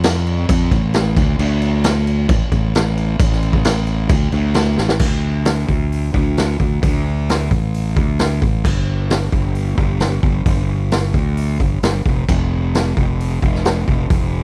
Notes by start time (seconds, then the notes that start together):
Already playing: F2
0.04 snare, crash
0.27 crash
0.49 F2, kick, crash
0.71 A1, kick, crash
0.94 snare, crash
1.17 D2, kick, crash
1.39 D2, crash
1.62 crash
1.84 snare, crash
2.07 crash
2.29 A1, kick, crash
2.52 A1, kick, crash
2.75 snare, crash
2.98 crash
3.19 A1, kick, crash
3.32 snare
3.43 crash
3.53 kick
3.65 snare, crash
3.87 crash
4.09 D2, kick, crash
4.32 D2, crash
4.54 snare, crash
4.78 A1, snare
4.89 snare
4.99 D2, kick, crash
5.45 snare, open hi-hat
5.69 D2, kick
5.92 open hi-hat
6.14 D2, kick
6.37 snare, open hi-hat
6.60 D2, kick
6.83 D2, kick, open hi-hat
7.29 snare, open hi-hat
7.51 A1, kick
7.74 open hi-hat
7.96 D2, kick
8.19 snare, open hi-hat
8.42 A1, kick
8.65 G1, kick, crash
9.10 snare, open hi-hat
9.32 G1, kick
9.55 open hi-hat
9.78 G1, kick
10.00 snare, open hi-hat
10.23 G1, kick
10.46 G1, kick, open hi-hat
10.91 snare, open hi-hat
11.14 D2, kick
11.37 open hi-hat
11.60 G1, kick
11.83 G1, snare, open hi-hat
12.05 F1, kick
12.29 F1, kick, crash
12.75 snare, open hi-hat
12.97 F1, kick
13.20 open hi-hat
13.42 F1, kick
13.55 snare
13.65 snare, open hi-hat
13.88 F1, kick
14.10 F1, kick, open hi-hat